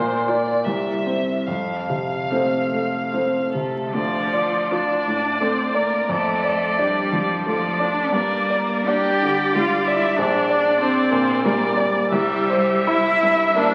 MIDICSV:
0, 0, Header, 1, 5, 480
1, 0, Start_track
1, 0, Key_signature, -1, "major"
1, 0, Tempo, 732601
1, 432, Tempo, 824176
1, 904, Time_signature, 3, 2, 24, 8
1, 1872, Tempo, 792602
1, 2360, Key_signature, -1, "minor"
1, 2832, Tempo, 684151
1, 5232, Tempo, 739827
1, 5712, Tempo, 646552
1, 8112, Tempo, 760456
1, 8592, Tempo, 685714
1, 9203, End_track
2, 0, Start_track
2, 0, Title_t, "Viola"
2, 0, Program_c, 0, 41
2, 0, Note_on_c, 0, 58, 49
2, 307, Note_off_c, 0, 58, 0
2, 422, Note_on_c, 0, 58, 40
2, 778, Note_off_c, 0, 58, 0
2, 1391, Note_on_c, 0, 57, 33
2, 1753, Note_off_c, 0, 57, 0
2, 1869, Note_on_c, 0, 57, 32
2, 2242, Note_off_c, 0, 57, 0
2, 2360, Note_on_c, 0, 74, 45
2, 2808, Note_off_c, 0, 74, 0
2, 2832, Note_on_c, 0, 74, 48
2, 3785, Note_off_c, 0, 74, 0
2, 3801, Note_on_c, 0, 74, 49
2, 4745, Note_off_c, 0, 74, 0
2, 4765, Note_on_c, 0, 74, 47
2, 5221, Note_off_c, 0, 74, 0
2, 5237, Note_on_c, 0, 74, 51
2, 5705, Note_off_c, 0, 74, 0
2, 5715, Note_on_c, 0, 74, 50
2, 6663, Note_off_c, 0, 74, 0
2, 6675, Note_on_c, 0, 74, 59
2, 7596, Note_off_c, 0, 74, 0
2, 7624, Note_on_c, 0, 74, 63
2, 8105, Note_off_c, 0, 74, 0
2, 8116, Note_on_c, 0, 76, 62
2, 9203, Note_off_c, 0, 76, 0
2, 9203, End_track
3, 0, Start_track
3, 0, Title_t, "Violin"
3, 0, Program_c, 1, 40
3, 0, Note_on_c, 1, 72, 54
3, 186, Note_on_c, 1, 74, 65
3, 196, Note_off_c, 1, 72, 0
3, 423, Note_on_c, 1, 76, 54
3, 433, Note_off_c, 1, 74, 0
3, 899, Note_on_c, 1, 77, 50
3, 908, Note_off_c, 1, 76, 0
3, 2109, Note_off_c, 1, 77, 0
3, 2112, Note_on_c, 1, 69, 39
3, 2359, Note_on_c, 1, 65, 50
3, 2368, Note_off_c, 1, 69, 0
3, 2832, Note_on_c, 1, 74, 53
3, 2843, Note_off_c, 1, 65, 0
3, 3320, Note_on_c, 1, 72, 45
3, 3331, Note_off_c, 1, 74, 0
3, 3554, Note_on_c, 1, 70, 55
3, 3565, Note_off_c, 1, 72, 0
3, 3804, Note_on_c, 1, 69, 60
3, 3814, Note_off_c, 1, 70, 0
3, 4284, Note_on_c, 1, 67, 47
3, 4295, Note_off_c, 1, 69, 0
3, 4770, Note_on_c, 1, 65, 43
3, 4781, Note_off_c, 1, 67, 0
3, 4994, Note_off_c, 1, 65, 0
3, 4998, Note_on_c, 1, 74, 61
3, 5232, Note_on_c, 1, 70, 56
3, 5242, Note_off_c, 1, 74, 0
3, 5711, Note_on_c, 1, 79, 67
3, 5722, Note_off_c, 1, 70, 0
3, 6211, Note_on_c, 1, 77, 64
3, 6222, Note_off_c, 1, 79, 0
3, 6444, Note_on_c, 1, 76, 70
3, 6455, Note_off_c, 1, 77, 0
3, 6677, Note_on_c, 1, 74, 76
3, 6689, Note_off_c, 1, 76, 0
3, 7138, Note_off_c, 1, 74, 0
3, 7143, Note_on_c, 1, 72, 66
3, 7616, Note_on_c, 1, 70, 56
3, 7627, Note_off_c, 1, 72, 0
3, 7859, Note_off_c, 1, 70, 0
3, 8102, Note_on_c, 1, 67, 73
3, 8562, Note_off_c, 1, 67, 0
3, 8592, Note_on_c, 1, 76, 74
3, 9061, Note_on_c, 1, 74, 69
3, 9071, Note_off_c, 1, 76, 0
3, 9203, Note_off_c, 1, 74, 0
3, 9203, End_track
4, 0, Start_track
4, 0, Title_t, "Cello"
4, 0, Program_c, 2, 42
4, 0, Note_on_c, 2, 53, 58
4, 308, Note_off_c, 2, 53, 0
4, 432, Note_on_c, 2, 55, 46
4, 782, Note_off_c, 2, 55, 0
4, 1394, Note_on_c, 2, 53, 39
4, 1755, Note_off_c, 2, 53, 0
4, 1870, Note_on_c, 2, 53, 29
4, 2103, Note_off_c, 2, 53, 0
4, 2123, Note_on_c, 2, 57, 44
4, 2357, Note_on_c, 2, 53, 62
4, 2366, Note_off_c, 2, 57, 0
4, 2828, Note_on_c, 2, 62, 68
4, 2838, Note_off_c, 2, 53, 0
4, 3318, Note_on_c, 2, 60, 55
4, 3328, Note_off_c, 2, 62, 0
4, 3555, Note_off_c, 2, 60, 0
4, 3559, Note_on_c, 2, 58, 51
4, 3799, Note_off_c, 2, 58, 0
4, 3805, Note_on_c, 2, 57, 73
4, 4292, Note_on_c, 2, 55, 71
4, 4303, Note_off_c, 2, 57, 0
4, 4763, Note_off_c, 2, 55, 0
4, 4767, Note_on_c, 2, 53, 63
4, 4996, Note_on_c, 2, 62, 73
4, 5007, Note_off_c, 2, 53, 0
4, 5228, Note_on_c, 2, 58, 75
4, 5238, Note_off_c, 2, 62, 0
4, 5714, Note_on_c, 2, 67, 88
4, 5725, Note_off_c, 2, 58, 0
4, 6207, Note_off_c, 2, 67, 0
4, 6211, Note_on_c, 2, 65, 74
4, 6437, Note_off_c, 2, 65, 0
4, 6442, Note_on_c, 2, 64, 76
4, 6668, Note_on_c, 2, 62, 86
4, 6679, Note_off_c, 2, 64, 0
4, 7137, Note_off_c, 2, 62, 0
4, 7143, Note_on_c, 2, 60, 89
4, 7622, Note_on_c, 2, 58, 75
4, 7633, Note_off_c, 2, 60, 0
4, 7862, Note_off_c, 2, 58, 0
4, 8115, Note_on_c, 2, 55, 94
4, 8595, Note_on_c, 2, 64, 104
4, 8605, Note_off_c, 2, 55, 0
4, 9071, Note_off_c, 2, 64, 0
4, 9075, Note_on_c, 2, 62, 88
4, 9203, Note_off_c, 2, 62, 0
4, 9203, End_track
5, 0, Start_track
5, 0, Title_t, "Grand piano"
5, 0, Program_c, 3, 0
5, 0, Note_on_c, 3, 46, 55
5, 76, Control_c, 3, 64, 127
5, 184, Note_on_c, 3, 65, 34
5, 190, Note_on_c, 3, 74, 36
5, 406, Note_off_c, 3, 65, 0
5, 409, Note_off_c, 3, 74, 0
5, 419, Note_off_c, 3, 46, 0
5, 432, Note_on_c, 3, 36, 44
5, 442, Control_c, 3, 64, 0
5, 565, Control_c, 3, 64, 127
5, 668, Note_on_c, 3, 60, 28
5, 668, Note_on_c, 3, 72, 32
5, 883, Note_off_c, 3, 60, 0
5, 883, Note_off_c, 3, 72, 0
5, 889, Note_off_c, 3, 36, 0
5, 908, Note_on_c, 3, 41, 35
5, 916, Control_c, 3, 64, 0
5, 1050, Control_c, 3, 64, 127
5, 1153, Note_on_c, 3, 48, 25
5, 1399, Note_on_c, 3, 57, 27
5, 1399, Note_on_c, 3, 60, 26
5, 1402, Note_on_c, 3, 72, 29
5, 1541, Note_off_c, 3, 48, 0
5, 1615, Note_off_c, 3, 57, 0
5, 1615, Note_off_c, 3, 60, 0
5, 1616, Note_off_c, 3, 72, 0
5, 1637, Note_on_c, 3, 57, 26
5, 1864, Note_off_c, 3, 57, 0
5, 1873, Note_on_c, 3, 57, 25
5, 1875, Note_on_c, 3, 60, 25
5, 1878, Note_on_c, 3, 72, 25
5, 2098, Note_off_c, 3, 57, 0
5, 2099, Note_off_c, 3, 60, 0
5, 2100, Note_off_c, 3, 72, 0
5, 2123, Note_on_c, 3, 48, 23
5, 2338, Note_off_c, 3, 41, 0
5, 2360, Note_off_c, 3, 48, 0
5, 2363, Note_on_c, 3, 38, 39
5, 2371, Control_c, 3, 64, 0
5, 2492, Control_c, 3, 64, 127
5, 2600, Note_on_c, 3, 74, 33
5, 2835, Note_on_c, 3, 65, 39
5, 2988, Note_off_c, 3, 74, 0
5, 3080, Note_on_c, 3, 45, 30
5, 3225, Note_off_c, 3, 65, 0
5, 3314, Note_on_c, 3, 57, 36
5, 3463, Note_off_c, 3, 45, 0
5, 3551, Note_on_c, 3, 74, 37
5, 3706, Note_off_c, 3, 57, 0
5, 3779, Note_off_c, 3, 38, 0
5, 3795, Note_on_c, 3, 41, 44
5, 3800, Note_off_c, 3, 74, 0
5, 3819, Control_c, 3, 64, 0
5, 3950, Control_c, 3, 64, 127
5, 4041, Note_on_c, 3, 74, 33
5, 4284, Note_on_c, 3, 62, 43
5, 4431, Note_off_c, 3, 74, 0
5, 4521, Note_on_c, 3, 53, 34
5, 4670, Note_off_c, 3, 62, 0
5, 4758, Note_on_c, 3, 57, 39
5, 4901, Note_off_c, 3, 53, 0
5, 4989, Note_on_c, 3, 74, 36
5, 5133, Note_off_c, 3, 57, 0
5, 5198, Note_off_c, 3, 41, 0
5, 5222, Note_on_c, 3, 43, 45
5, 5227, Note_off_c, 3, 74, 0
5, 5242, Control_c, 3, 64, 0
5, 5356, Control_c, 3, 64, 127
5, 5467, Note_on_c, 3, 74, 39
5, 5711, Note_on_c, 3, 62, 51
5, 5867, Note_off_c, 3, 74, 0
5, 5971, Note_on_c, 3, 50, 38
5, 6113, Note_off_c, 3, 62, 0
5, 6215, Note_on_c, 3, 55, 40
5, 6355, Note_off_c, 3, 50, 0
5, 6451, Note_on_c, 3, 74, 41
5, 6590, Note_off_c, 3, 55, 0
5, 6646, Note_off_c, 3, 43, 0
5, 6681, Note_on_c, 3, 34, 55
5, 6683, Note_off_c, 3, 74, 0
5, 6694, Control_c, 3, 64, 0
5, 6797, Control_c, 3, 64, 127
5, 6915, Note_on_c, 3, 74, 48
5, 7145, Note_on_c, 3, 62, 50
5, 7285, Note_off_c, 3, 74, 0
5, 7372, Note_on_c, 3, 46, 45
5, 7522, Note_off_c, 3, 62, 0
5, 7623, Note_on_c, 3, 55, 46
5, 7760, Note_off_c, 3, 46, 0
5, 7857, Note_on_c, 3, 74, 49
5, 8012, Note_off_c, 3, 55, 0
5, 8082, Note_off_c, 3, 34, 0
5, 8110, Note_off_c, 3, 74, 0
5, 8116, Note_on_c, 3, 36, 62
5, 8124, Control_c, 3, 64, 0
5, 8230, Control_c, 3, 64, 127
5, 8356, Note_on_c, 3, 72, 52
5, 8593, Note_on_c, 3, 64, 56
5, 8745, Note_off_c, 3, 72, 0
5, 8842, Note_on_c, 3, 43, 52
5, 8979, Note_off_c, 3, 64, 0
5, 9074, Note_on_c, 3, 58, 52
5, 9203, Note_off_c, 3, 36, 0
5, 9203, Note_off_c, 3, 43, 0
5, 9203, Note_off_c, 3, 58, 0
5, 9203, End_track
0, 0, End_of_file